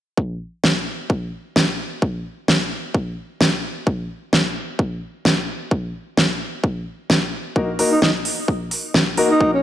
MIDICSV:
0, 0, Header, 1, 4, 480
1, 0, Start_track
1, 0, Key_signature, -6, "minor"
1, 0, Tempo, 461538
1, 182, Time_signature, 4, 2, 24, 8
1, 10013, End_track
2, 0, Start_track
2, 0, Title_t, "Grand piano"
2, 0, Program_c, 0, 0
2, 7862, Note_on_c, 0, 58, 77
2, 7862, Note_on_c, 0, 63, 71
2, 7862, Note_on_c, 0, 66, 68
2, 7862, Note_on_c, 0, 70, 82
2, 7979, Note_off_c, 0, 58, 0
2, 7979, Note_off_c, 0, 63, 0
2, 7979, Note_off_c, 0, 66, 0
2, 7979, Note_off_c, 0, 70, 0
2, 8102, Note_on_c, 0, 58, 79
2, 8102, Note_on_c, 0, 63, 75
2, 8102, Note_on_c, 0, 66, 73
2, 8102, Note_on_c, 0, 70, 91
2, 8218, Note_off_c, 0, 63, 0
2, 8218, Note_off_c, 0, 66, 0
2, 8219, Note_off_c, 0, 58, 0
2, 8219, Note_off_c, 0, 70, 0
2, 9542, Note_on_c, 0, 58, 92
2, 9542, Note_on_c, 0, 63, 79
2, 9542, Note_on_c, 0, 66, 83
2, 9542, Note_on_c, 0, 70, 102
2, 9658, Note_off_c, 0, 58, 0
2, 9658, Note_off_c, 0, 63, 0
2, 9658, Note_off_c, 0, 70, 0
2, 9659, Note_off_c, 0, 66, 0
2, 9782, Note_on_c, 0, 58, 78
2, 9782, Note_on_c, 0, 63, 68
2, 9782, Note_on_c, 0, 66, 72
2, 9782, Note_on_c, 0, 70, 82
2, 9899, Note_off_c, 0, 58, 0
2, 9899, Note_off_c, 0, 63, 0
2, 9899, Note_off_c, 0, 66, 0
2, 9899, Note_off_c, 0, 70, 0
2, 10013, End_track
3, 0, Start_track
3, 0, Title_t, "Alto saxophone"
3, 0, Program_c, 1, 65
3, 8236, Note_on_c, 1, 63, 78
3, 8304, Note_off_c, 1, 63, 0
3, 8342, Note_on_c, 1, 63, 69
3, 8428, Note_off_c, 1, 63, 0
3, 9676, Note_on_c, 1, 63, 87
3, 9877, Note_off_c, 1, 63, 0
3, 9916, Note_on_c, 1, 61, 81
3, 9984, Note_off_c, 1, 61, 0
3, 10013, End_track
4, 0, Start_track
4, 0, Title_t, "Drums"
4, 182, Note_on_c, 9, 36, 107
4, 286, Note_off_c, 9, 36, 0
4, 662, Note_on_c, 9, 36, 93
4, 665, Note_on_c, 9, 38, 107
4, 766, Note_off_c, 9, 36, 0
4, 769, Note_off_c, 9, 38, 0
4, 1142, Note_on_c, 9, 36, 104
4, 1246, Note_off_c, 9, 36, 0
4, 1622, Note_on_c, 9, 36, 90
4, 1625, Note_on_c, 9, 38, 111
4, 1726, Note_off_c, 9, 36, 0
4, 1729, Note_off_c, 9, 38, 0
4, 2102, Note_on_c, 9, 36, 109
4, 2206, Note_off_c, 9, 36, 0
4, 2582, Note_on_c, 9, 36, 98
4, 2586, Note_on_c, 9, 38, 109
4, 2686, Note_off_c, 9, 36, 0
4, 2690, Note_off_c, 9, 38, 0
4, 3062, Note_on_c, 9, 36, 108
4, 3166, Note_off_c, 9, 36, 0
4, 3542, Note_on_c, 9, 36, 93
4, 3545, Note_on_c, 9, 38, 115
4, 3646, Note_off_c, 9, 36, 0
4, 3649, Note_off_c, 9, 38, 0
4, 4022, Note_on_c, 9, 36, 111
4, 4126, Note_off_c, 9, 36, 0
4, 4502, Note_on_c, 9, 36, 99
4, 4505, Note_on_c, 9, 38, 106
4, 4606, Note_off_c, 9, 36, 0
4, 4609, Note_off_c, 9, 38, 0
4, 4982, Note_on_c, 9, 36, 113
4, 5086, Note_off_c, 9, 36, 0
4, 5462, Note_on_c, 9, 36, 97
4, 5465, Note_on_c, 9, 38, 112
4, 5566, Note_off_c, 9, 36, 0
4, 5569, Note_off_c, 9, 38, 0
4, 5942, Note_on_c, 9, 36, 112
4, 6046, Note_off_c, 9, 36, 0
4, 6422, Note_on_c, 9, 36, 100
4, 6425, Note_on_c, 9, 38, 104
4, 6526, Note_off_c, 9, 36, 0
4, 6529, Note_off_c, 9, 38, 0
4, 6902, Note_on_c, 9, 36, 107
4, 7006, Note_off_c, 9, 36, 0
4, 7382, Note_on_c, 9, 36, 93
4, 7385, Note_on_c, 9, 38, 105
4, 7486, Note_off_c, 9, 36, 0
4, 7489, Note_off_c, 9, 38, 0
4, 7861, Note_on_c, 9, 36, 111
4, 7965, Note_off_c, 9, 36, 0
4, 8101, Note_on_c, 9, 46, 94
4, 8205, Note_off_c, 9, 46, 0
4, 8342, Note_on_c, 9, 36, 95
4, 8345, Note_on_c, 9, 38, 101
4, 8446, Note_off_c, 9, 36, 0
4, 8449, Note_off_c, 9, 38, 0
4, 8581, Note_on_c, 9, 46, 93
4, 8685, Note_off_c, 9, 46, 0
4, 8821, Note_on_c, 9, 36, 102
4, 8925, Note_off_c, 9, 36, 0
4, 9061, Note_on_c, 9, 46, 94
4, 9165, Note_off_c, 9, 46, 0
4, 9301, Note_on_c, 9, 36, 95
4, 9305, Note_on_c, 9, 38, 100
4, 9405, Note_off_c, 9, 36, 0
4, 9409, Note_off_c, 9, 38, 0
4, 9541, Note_on_c, 9, 46, 89
4, 9645, Note_off_c, 9, 46, 0
4, 9782, Note_on_c, 9, 36, 106
4, 9886, Note_off_c, 9, 36, 0
4, 10013, End_track
0, 0, End_of_file